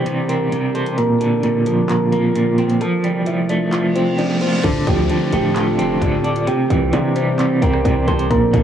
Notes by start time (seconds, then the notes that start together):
Already playing: E3 G3 C4 G4 C5, downlifter
0.06 C3, closed hi-hat
0.29 C4 A#4 A#5, closed hi-hat
0.52 C3, closed hi-hat
0.75 A4 C5 A5, closed hi-hat
0.86 closed hi-hat
0.98 A#2 D3 A#3 F4 A#4 A#5, closed hi-hat
1.20 D3 A4 A5, closed hi-hat
1.43 A#2 A#4 A#5, closed hi-hat
1.66 F3 A4 A5, closed hi-hat
1.89 A#2 A#4 A#5, clap, closed hi-hat
2.12 A#3 A#4 A#5, closed hi-hat
2.35 A#2, closed hi-hat
2.58 C4, closed hi-hat
2.69 closed hi-hat
2.81 C3 F3 G3 A3 A4 A5, closed hi-hat
3.04 G3, closed hi-hat
3.26 F3 E4 E5, closed hi-hat
3.49 A3 D4 D5, closed hi-hat
3.72 F3, clap, closed hi-hat, reverse cymbal
3.95 C4 C5, closed hi-hat
4.18 F3 D4 D5, snare, closed hi-hat
4.24 snare
4.30 snare
4.35 snare
4.41 C4 F4 C5, snare, closed hi-hat
4.47 snare
4.53 snare
4.58 snare
4.64 D1 D3 A3 C4 F4 A4 A5, kick, closed hi-hat, crash, downlifter
4.87 D2 F3 G4 G5, kick, closed hi-hat
5.10 D3 A4 A5, closed hi-hat
5.33 D1 A3 G4 G5, closed hi-hat
5.56 D3 A4 A5, clap, closed hi-hat
5.78 F1 C4 A4 A5, closed hi-hat
6.01 D1 D3, kick, closed hi-hat
6.24 D4, closed hi-hat
6.36 closed hi-hat
6.47 C3 E3 G3 C4 G4 G5, closed hi-hat
6.70 C2 E3, kick, closed hi-hat
6.93 C3 D4 D5, closed hi-hat
7.16 G3 C4 C5, closed hi-hat
7.39 C3, clap, closed hi-hat
7.62 C2 C4 A#4 A#5, kick, closed hi-hat
7.73 cross-stick
7.85 C2 C3, kick, closed hi-hat
8.07 C2 A4 C5 A5, cross-stick, closed hi-hat, open hi-hat
8.19 closed hi-hat
8.30 A#1 A#2 D3 A#3 C4 F4 A#4 A#5, kick, closed hi-hat
8.53 A#1 D3 A4 A5, kick, closed hi-hat